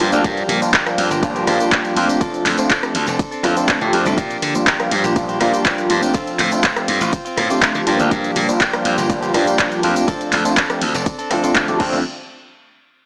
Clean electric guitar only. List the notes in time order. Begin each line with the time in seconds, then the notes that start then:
0.00 F3 A#3 D4 G4
0.12 A#3 D4 G4
0.24 F3 A#3 D4 G4
0.73 F3 A#3 D4 G4
0.97 F3 A#3 D4 G4
1.10 A#3 D4 G4
1.35 A#3 D4 G4
1.47 F3 A#3 D4 G4
1.59 A#3 D4 G4
1.71 F3 A#3 D4 G4
1.96 F3 A#3 D4 G4
2.09 A#3 D4 G4
2.21 F3 C4 D4 A4
2.70 F3 C4 D4 A4
2.94 F3 C4 D4 A4
3.07 C4 D4 A4
3.31 C4 D4 A4
3.43 F3 C4 D4 A4
3.68 F3 C4 D4 A4
3.92 F3 C4 D4 A4
4.05 C4 D4 A4
4.17 F3 A#3 D4 G4
4.66 F3 A#3 D4 G4
4.91 F3 A#3 D4 G4
5.04 A#3 D4 G4
5.28 A#3 D4 G4
5.40 F3 A#3 D4 G4
5.53 A#3 D4 G4
5.65 F3 A#3 D4 G4
5.89 F3 A#3 D4 G4
6.02 A#3 D4 G4
6.14 A3 C4 F4
6.63 A3 C4 F4
6.87 A3 C4 F4
7.00 C4 F4
7.25 C4 F4
7.37 A3 C4 F4
7.49 C4 F4
7.61 A3 C4 F4
7.86 F3 A#3 D4 G4
7.99 A#3 D4 G4
8.11 F3 A#3 D4 G4
8.60 F3 A#3 D4 G4
8.84 F3 A#3 D4 G4
8.97 A#3 D4 G4
9.22 A#3 D4 G4
9.34 F3 A#3 D4 G4
9.59 A#3 D4 G4
9.83 F3 A#3 D4 G4
9.95 A#3 D4 G4
10.07 F3 C4 D4 A4
10.56 F3 C4 D4 A4
10.81 F3 C4 D4 A4
10.94 C4 D4 A4
11.19 C4 D4 A4
11.30 F3 C4 D4 A4
11.43 C4 D4 A4
11.55 F3 C4 D4 A4
11.79 F3 C4 D4 A4